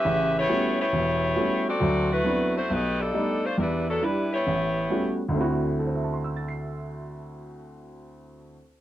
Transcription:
Already playing: saxophone section C#4 G4 B4 E5
0.05 grand piano A1 C#3
0.38 saxophone section B3 E4 G4 C#5
0.48 grand piano G3 A3 B3 C#4 F#4
0.80 saxophone section B3 E4 G4 C#5
0.93 grand piano E1
1.36 grand piano G3 A3 B3 C#4 F#4
1.68 saxophone section C4 F#4 A4 D5
1.80 grand piano D2 F#3
2.12 saxophone section A3 E4 F#4 B4
2.24 grand piano F#3 B3 C4 D4 E4
2.57 saxophone section A3 E4 F#4 C5
2.70 grand piano B1, saxophone section A3 D#4 G4 B4
3.01 saxophone section G3 D4 D#4 A4
3.13 grand piano G3 A3 B3 D#4
3.45 saxophone section A3 D4 F4 C5
3.58 grand piano E2, saxophone section G3 D4 E4 A#4 B4
3.88 saxophone section F#3 B3 D4 A4
4.02 grand piano G3 D4 E4, saxophone section G3 D4 E4 B4
4.33 saxophone section B3 E4 G4 C#5
4.47 grand piano A1
4.90 grand piano G3 A3 B3 C#4 F#4
5.29 grand piano D2 D3
5.34 grand piano A3 C4 E4
5.40 grand piano F#4
5.79 grand piano A4
5.87 grand piano C5
5.95 grand piano E5
6.04 grand piano A5
6.14 grand piano C6
6.24 grand piano E6
6.36 grand piano A6
6.48 grand piano C7

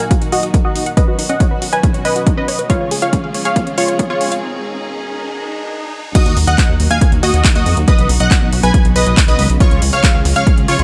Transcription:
Already playing: string section A#2 D#3 F#3 D#4 F#4, riser
0.00 supersaw synth F5 G#5
0.11 synth pluck F#4, kick, closed hi-hat
0.22 synth pluck D#4, closed hi-hat
0.32 supersaw synth F#4 D#5, synth pluck F#5, open hi-hat
0.43 synth pluck D#5, closed hi-hat
0.54 synth pluck A#4, kick, closed hi-hat
0.65 supersaw synth F#4 D#5, synth pluck F#4
0.76 synth pluck D#4, open hi-hat
0.86 synth pluck F#5, closed hi-hat
0.97 string section B2 F#3 C#4 F#4, supersaw synth B4 D#5, synth pluck B4, kick, closed hi-hat
1.08 synth pluck F#4
1.19 synth pluck D#4, open hi-hat
1.29 synth pluck C#4, supersaw synth D#5 F#5, closed hi-hat
1.40 synth pluck C#5, kick, closed hi-hat
1.51 synth pluck B4
1.62 synth pluck F#4, open hi-hat
1.73 synth pluck D#4, supersaw synth B4 G#5, closed hi-hat
1.83 synth pluck C#4, kick, closed hi-hat
1.94 synth pluck C#5, closed hi-hat
2.05 synth pluck B4, supersaw synth B4 D#5, open hi-hat
2.16 synth pluck F#4, closed hi-hat
2.27 synth pluck D#4, kick, closed hi-hat
2.37 synth pluck C#4, supersaw synth B4 D#5
2.48 synth pluck C#5, open hi-hat
2.59 synth pluck B4, closed hi-hat
2.70 string section C#3 F3 G#3 F4 G#4, supersaw synth F4 C#5, synth pluck F5, kick, closed hi-hat
2.81 synth pluck C#5
2.91 synth pluck G#4, open hi-hat
3.02 synth pluck F4, supersaw synth C#5 F5, closed hi-hat
3.13 synth pluck C#4, kick, closed hi-hat
3.24 synth pluck F5
3.34 synth pluck C#5, open hi-hat
3.45 synth pluck G#4, supersaw synth C#5 F5, closed hi-hat
3.56 synth pluck F4, kick, closed hi-hat
3.67 synth pluck C#4, closed hi-hat
3.78 supersaw synth F4 C#5, synth pluck F5, open hi-hat
3.88 synth pluck C#5, closed hi-hat
3.99 synth pluck G#4, kick, closed hi-hat
4.10 synth pluck F4, supersaw synth F4 C#5
4.21 synth pluck C#4, open hi-hat
4.32 synth pluck F5, closed hi-hat
4.42 string section B2 D#3 D#4
5.29 swell
6.15 string section A#2 D#3 F#3 D#4 F#4, supersaw synth F#4 D#5, digital synth lead D#6, kick, closed hi-hat, crash
6.26 analog synth bass D#2, closed hi-hat
6.37 analog synth bass D#2, open hi-hat
6.47 analog synth bass D#2, supersaw synth D#5 F#5, digital synth lead F#6, closed hi-hat
6.58 kick, clap, closed hi-hat
6.69 analog synth bass D#2
6.80 analog synth bass D#2, open hi-hat
6.91 analog synth bass D#2, supersaw synth F5 G#5, digital synth lead G#6, closed hi-hat
7.01 kick, closed hi-hat
7.12 analog synth bass D#2, closed hi-hat
7.23 analog synth bass D#2, supersaw synth F#4 D#5, digital synth lead D#6, open hi-hat
7.34 analog synth bass D#2, closed hi-hat
7.45 kick, clap, closed hi-hat
7.55 analog synth bass D#2, supersaw synth F#4 D#5, digital synth lead D#6, closed hi-hat
7.66 analog synth bass F2, open hi-hat
7.77 analog synth bass D#2, closed hi-hat
7.88 string section C#3 F#3 B3, supersaw synth B4 D#5, digital synth lead D#6, kick, closed hi-hat
7.99 analog synth bass B1, closed hi-hat
8.09 analog synth bass B1, open hi-hat
8.20 analog synth bass B1, supersaw synth D#5 F#5, digital synth lead F#6, closed hi-hat
8.31 kick, clap, closed hi-hat
8.42 analog synth bass B1
8.53 analog synth bass B1, open hi-hat
8.63 analog synth bass B1, supersaw synth B4 G#5, digital synth lead G#6, closed hi-hat
8.74 kick, closed hi-hat
8.85 analog synth bass B1, closed hi-hat
8.96 analog synth bass B1, supersaw synth B4 D#5, digital synth lead D#6, open hi-hat
9.06 analog synth bass B1, closed hi-hat
9.17 kick, clap, closed hi-hat
9.28 analog synth bass B1, supersaw synth B4 D#5, digital synth lead D#6, closed hi-hat
9.39 analog synth bass C#2, open hi-hat
9.50 analog synth bass B1, closed hi-hat
9.60 string section F3 G#3 F4 G#4, supersaw synth F4 C#5, digital synth lead C#6, kick, closed hi-hat
9.71 analog synth bass C#2, closed hi-hat
9.82 analog synth bass C#2, open hi-hat
9.93 analog synth bass C#2, supersaw synth C#5 F5, digital synth lead F6, closed hi-hat
10.04 kick, clap, closed hi-hat
10.14 analog synth bass C#2
10.25 analog synth bass C#2, open hi-hat
10.36 analog synth bass C#2, supersaw synth C#5 F5, digital synth lead F6, closed hi-hat
10.47 kick, closed hi-hat
10.58 analog synth bass C#2, closed hi-hat
10.68 analog synth bass C#2, supersaw synth F4 C#5, digital synth lead C#6, open hi-hat
10.79 analog synth bass C#2, closed hi-hat

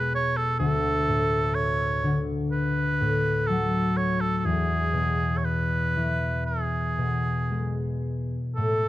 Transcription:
Already playing: harp E2 B2 G#3, oboe B4
0.15 oboe C#5
0.37 oboe A4
0.59 harp D2, oboe A4
1.08 harp A2
1.55 oboe C#5
2.04 harp D3
2.52 oboe B4
3.01 harp A2
3.47 harp F#3, oboe A4
3.97 oboe C#5
4.21 oboe A4
4.38 oboe A4
4.45 harp E2, oboe G#4
4.93 harp B2
5.38 oboe C#5
5.45 oboe B4
5.97 harp E3
6.46 oboe G#4
6.98 harp B2
7.51 harp G#3
8.56 harp A2, oboe A4

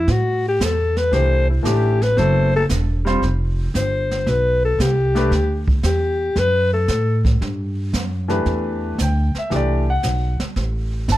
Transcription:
Already playing: alto saxophone E4
0.08 upright bass A2, alto saxophone F#4, brush sweep, kick, snare
0.48 alto saxophone G4
0.60 upright bass E2, alto saxophone A4, kick, snare, hi-hat pedal
0.97 alto saxophone B4, snare
1.11 upright bass C2, grand piano E3 A3 D4 G4, alto saxophone C5, brush sweep, kick, snare
1.50 alto saxophone E4
1.63 upright bass A1, grand piano E3 A3 D4 G4, alto saxophone G4, kick, snare, hi-hat pedal
2.02 alto saxophone B4, snare
2.17 upright bass F#1, grand piano F#3 B3 E4 A4, alto saxophone C5, brush sweep, kick, snare
2.56 alto saxophone A4
2.69 upright bass E1, kick, snare, hi-hat pedal
3.05 grand piano G3 C4 F4 C5, snare
3.22 upright bass F1, brush sweep, kick, snare
3.74 upright bass G1, alto saxophone C5, kick, snare, hi-hat pedal
4.11 snare
4.26 upright bass B1, alto saxophone B4, brush sweep, kick, snare
4.65 alto saxophone A4
4.78 upright bass C2, alto saxophone G4, kick, snare, hi-hat pedal
5.15 grand piano A3 D4 G4 B4, snare
5.31 upright bass D2, brush sweep, kick, snare
5.68 kick
5.83 upright bass E2, alto saxophone G4, snare, hi-hat pedal
6.36 upright bass F#2, alto saxophone B4, brush sweep, kick, snare
6.73 alto saxophone A4
6.88 upright bass A2, kick, snare, hi-hat pedal
7.25 kick, snare
7.41 upright bass G2, brush sweep, kick, snare
7.93 upright bass F#2, kick, snare, hi-hat pedal
8.28 grand piano E3 A3 D4 G4 B4, snare
8.46 upright bass E2, brush sweep, kick, snare
8.98 upright bass D2, kick, snare, hi-hat pedal
9.02 grand piano G5
9.35 grand piano E5, muted upright bass stroke, snare
9.50 upright bass C2, grand piano E3 A3 D4 G4, brush sweep, kick, snare
9.56 grand piano D5
9.90 grand piano F#5
10.03 upright bass B1, kick, snare, hi-hat pedal
10.40 muted upright bass stroke, snare
10.56 upright bass A1, brush sweep, kick, snare
11.08 upright bass G1, grand piano A5, kick, snare, hi-hat pedal

